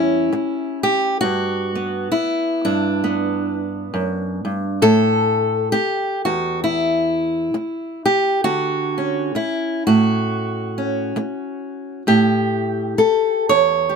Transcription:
Already playing: E2 G3 C#4 E4
0.33 muted steel-string acoustic guitar stroke
0.83 G4
1.21 G2 F#4
1.75 B3
2.12 E4, muted steel-string acoustic guitar stroke
2.65 G2 D4
3.04 B3
3.94 F#2
4.45 G2
4.82 A2 A4
5.72 G4, muted steel-string acoustic guitar stroke
6.25 E2 F#4
6.64 E4
7.54 muted steel-string acoustic guitar stroke
8.05 G4
8.44 D3 F#4
8.98 C#4
9.35 E4, muted steel-string acoustic guitar stroke
9.87 A2 F#4
10.78 C#4
11.16 muted steel-string acoustic guitar stroke
12.07 A2 G4
12.98 A4, muted steel-string acoustic guitar stroke
13.49 E2 C#5
13.89 G4

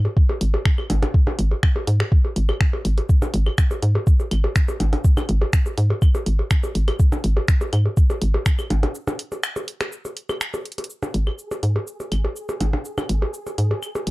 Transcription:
0.05 percussion blips
0.17 kick
0.29 percussion blips
0.41 G#1, open hi-hat
0.54 percussion blips
0.65 finger snap, kick
0.78 percussion blips, claves
0.90 G#1, open hi-hat, percussion blips
1.03 open hi-hat, percussion blips
1.14 kick
1.27 percussion blips
1.39 G#1, open hi-hat
1.51 percussion blips
1.63 finger snap, kick, claves
1.76 percussion blips
1.87 G#2, open hi-hat
2.00 finger snap, percussion blips
2.12 kick
2.25 percussion blips
2.36 G#1, open hi-hat
2.49 percussion blips, claves
2.61 finger snap, kick
2.73 percussion blips
2.85 G#1, open hi-hat
2.98 open hi-hat, percussion blips
3.09 kick, shaker
3.22 percussion blips, shaker
3.34 G#1, open hi-hat
3.46 percussion blips, claves
3.58 finger snap, kick, shaker
3.71 percussion blips, shaker
3.82 G#2, open hi-hat
3.95 percussion blips
4.07 kick, shaker
4.20 percussion blips, shaker
4.31 G#1, open hi-hat, claves
4.44 percussion blips
4.56 finger snap, kick, shaker
4.68 percussion blips, shaker
4.80 G#1, open hi-hat, percussion blips
4.93 open hi-hat, percussion blips
5.04 kick, shaker
5.17 percussion blips, claves, shaker
5.29 G#1, open hi-hat
5.42 percussion blips
5.53 finger snap, kick, shaker
5.66 percussion blips, shaker
5.78 G#2, open hi-hat
5.90 percussion blips
6.02 kick, claves, shaker
6.15 percussion blips, shaker
6.26 G#1, open hi-hat
6.39 percussion blips
6.51 finger snap, kick, shaker
6.63 percussion blips, shaker
6.75 G#1, open hi-hat
6.88 open hi-hat, percussion blips, claves
7.00 kick, shaker
7.12 percussion blips, shaker
7.24 G#1, open hi-hat
7.37 percussion blips
7.48 finger snap, kick, shaker
7.61 percussion blips, shaker
7.73 G#2, open hi-hat, claves
7.86 percussion blips
7.97 kick, shaker
8.10 percussion blips, shaker
8.22 G#1, open hi-hat
8.34 percussion blips
8.46 finger snap, kick, shaker
8.59 percussion blips, claves, shaker
8.70 G#1, open hi-hat, percussion blips
8.83 open hi-hat, percussion blips
8.95 shaker
9.07 percussion blips, shaker
9.19 open hi-hat
9.32 percussion blips, shaker
9.43 finger snap, claves, shaker
9.56 percussion blips, shaker
9.68 open hi-hat
9.81 finger snap, percussion blips, shaker
9.92 shaker
10.05 percussion blips, shaker
10.17 open hi-hat
10.29 percussion blips, claves, shaker
10.41 finger snap, shaker
10.54 percussion blips, shaker
10.65 closed hi-hat
10.72 closed hi-hat
10.78 closed hi-hat, percussion blips
10.84 closed hi-hat
10.90 G#4, shaker
11.03 percussion blips, shaker
11.14 G#1, open hi-hat
11.27 percussion blips, claves
11.39 shaker
11.51 percussion blips, shaker
11.63 G#2, open hi-hat
11.76 percussion blips
11.87 shaker
12.00 percussion blips, shaker
12.12 G#1, open hi-hat, claves
12.25 percussion blips
12.36 shaker
12.49 percussion blips, shaker
12.61 G#1, open hi-hat, percussion blips
12.73 percussion blips
12.85 shaker
12.98 percussion blips, claves, shaker
13.09 G#1, open hi-hat
13.22 percussion blips
13.34 shaker
13.46 percussion blips, shaker
13.58 G#2, open hi-hat
13.71 percussion blips
13.83 claves, shaker
13.95 percussion blips, shaker
14.07 G#1, open hi-hat

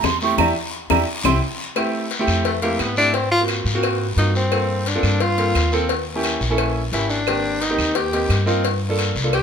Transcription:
0.03 E2 C6, high bongo, low bongo, short guiro, claves
0.21 A3 C4 E4 G4 C#6, short guiro
0.38 E2 D4 E4 G4 A#5, low bongo, long guiro, claves
0.90 E2 D4 E4 G4 A#5, low bongo, long guiro, claves
1.24 C2 C4 E4 G4 C6, low bongo, long guiro, claves
1.76 A3 C4 E4 G4, cowbell, long guiro, claves
2.11 cowbell, short guiro
2.19 A3 C4 E4 G4
2.27 F2, short guiro, claves
2.45 A3, cowbell, long guiro
2.62 A3 A#3 C4 E4 G4, cowbell
2.79 G#2 B3, cowbell, short guiro, claves
2.96 A3 C4 D4 E4 G4, short guiro
3.13 C4, cowbell, long guiro
3.31 F4
3.40 A#3 C4 F4 F#4
3.48 cowbell, short guiro, claves
3.65 G#2, short guiro
3.74 A#3 C4 F4 F#4
3.83 cowbell, long guiro, claves
4.16 G2 A#3 C4 D#4 F4 F#4, cowbell, short guiro
4.35 C4, short guiro
4.51 A#3 C4 F4 A4, cowbell, long guiro, claves
4.86 D4, cowbell, short guiro
4.94 A#3 C4 F4 A4
5.03 G2, short guiro, claves
5.20 F4, cowbell, long guiro
5.37 A#3 C4 F4 A4, cowbell
5.55 D#2, cowbell, short guiro, claves
5.72 A#3 C4 F4 A4, short guiro
5.89 cowbell, long guiro
6.15 A#3 C#4 E4 G4
6.24 cowbell, short guiro, claves
6.40 A#1, short guiro
6.50 A#3 C#4 E4 A4
6.58 cowbell, long guiro, claves
6.92 G#1 A#3 C#4 E4 G4, cowbell, short guiro
7.09 D4, short guiro
7.27 D#3 A#3 C4 G4, cowbell, long guiro, claves
7.61 D#4, cowbell, short guiro
7.69 A#3 C4 D#4 G4
7.78 D#2, short guiro, claves
7.95 G4, cowbell, long guiro
8.12 A#3 C4 D#4 G4, cowbell
8.29 G2, cowbell, short guiro, claves
8.46 A#3 C4 D#4 F4, short guiro
8.64 cowbell, long guiro
8.89 A#3 D4 F4 A4
8.99 cowbell, short guiro, claves
9.15 C2, short guiro
9.23 A#3 D4 F4 A4
9.33 G4, cowbell, long guiro, claves

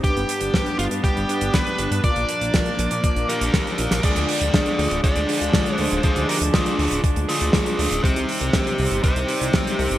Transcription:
0.04 G2 G3 B3 D4 G4 B4, kick, closed hi-hat
0.16 G1, closed hi-hat
0.29 closed hi-hat
0.41 G1, closed hi-hat
0.54 kick, snare, closed hi-hat
0.66 closed hi-hat
0.79 G1 F4, closed hi-hat
0.91 G2, closed hi-hat
1.04 G4, kick, closed hi-hat
1.16 G1, closed hi-hat
1.29 G2 B3 D4 G4 B4, closed hi-hat
1.41 G1, closed hi-hat
1.54 B4, kick, snare, closed hi-hat
1.67 closed hi-hat
1.78 G1, closed hi-hat
1.91 G2, closed hi-hat
2.04 A#2 F3 A#3 D4 F4 A#4 D5, kick, closed hi-hat
2.16 A#1, closed hi-hat
2.29 closed hi-hat
2.41 A#1, closed hi-hat
2.54 kick, snare, closed hi-hat
2.66 closed hi-hat
2.79 A#1, closed hi-hat
2.91 A#2, closed hi-hat
3.04 kick, closed hi-hat
3.16 A#1, closed hi-hat
3.29 A#2 A#3 D4 F4 G4 A#4, closed hi-hat
3.41 A#1, closed hi-hat
3.54 kick, snare, closed hi-hat
3.67 closed hi-hat
3.78 A#1 A#3 D4 F4 A#4, closed hi-hat
3.91 A#1, snare, closed hi-hat
4.03 D3 F3 G#3 D4 F4 G#4 D5, kick, closed hi-hat, crash
4.16 D2, closed hi-hat
4.29 open hi-hat
4.41 D2, closed hi-hat
4.54 kick, snare, closed hi-hat
4.66 closed hi-hat
4.79 D2, open hi-hat
4.91 D1, closed hi-hat
5.04 G#4 D5, kick, closed hi-hat
5.16 D2, closed hi-hat
5.29 D3 G#3 D4 F4 G#4, open hi-hat
5.41 D2, closed hi-hat
5.54 kick, snare, closed hi-hat
5.66 closed hi-hat
5.76 D2 C5, open hi-hat
5.91 D1, closed hi-hat
6.03 D3 G#3 D4 F4 G#4 C5, kick, closed hi-hat
6.16 D2, closed hi-hat
6.29 G4 A#4, open hi-hat
6.41 D2, closed hi-hat
6.54 F4 G#4, kick, snare, closed hi-hat
6.66 closed hi-hat
6.79 D2, open hi-hat
6.91 D1, closed hi-hat
7.04 kick, closed hi-hat
7.16 D2, closed hi-hat
7.29 D3 G#3 D4 F4 G#4, open hi-hat
7.41 D2, closed hi-hat
7.53 kick, snare, closed hi-hat
7.66 closed hi-hat
7.79 D2 G#3 D4 F4 G#4, open hi-hat
7.91 D1, closed hi-hat
8.04 C3 D#3 G3 C4 D#4 G4 C5, kick, closed hi-hat
8.16 C2, closed hi-hat
8.29 open hi-hat
8.41 C2, closed hi-hat
8.53 kick, snare, closed hi-hat
8.67 closed hi-hat
8.78 C2, open hi-hat
8.91 G1, closed hi-hat
9.03 G4 C5, kick, closed hi-hat
9.16 C2, closed hi-hat
9.28 C3 G3 C4 D#4 G4, open hi-hat
9.41 C2, closed hi-hat
9.53 kick, snare, closed hi-hat
9.67 closed hi-hat
9.79 C2, open hi-hat
9.91 G1, closed hi-hat

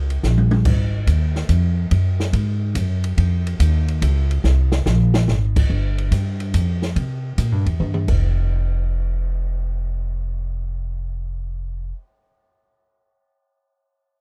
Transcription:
Already playing: C#2
0.10 ride
0.23 A#1, snare, hi-hat pedal
0.37 high tom
0.51 high tom
0.65 G#1, kick, crash
1.07 D#2, kick, hi-hat pedal, ride
1.35 snare
1.49 F2, kick, hi-hat pedal, ride
1.91 F#2, kick, ride
2.20 snare
2.33 G#2, kick, ride
2.75 F#2, kick, hi-hat pedal, ride
3.04 ride
3.17 F2, kick, ride
3.47 ride
3.60 D#2, kick, hi-hat pedal, ride
3.88 ride
4.02 C#2, kick, hi-hat pedal, ride
4.31 ride
4.44 C2, snare
4.72 snare
4.86 A#1, snare, hi-hat pedal
5.14 snare
5.28 G#1, snare
5.56 kick, crash
5.70 G1, kick
5.98 ride
6.11 G2, kick, hi-hat pedal, ride
6.40 ride
6.54 F2, kick, hi-hat pedal, ride
6.82 snare
6.96 C3, kick, ride
7.38 A#2, kick, hi-hat pedal, ride
7.52 G2
7.66 E2, ride
7.80 G2, mid tom
7.94 mid tom
8.08 F1, kick, crash

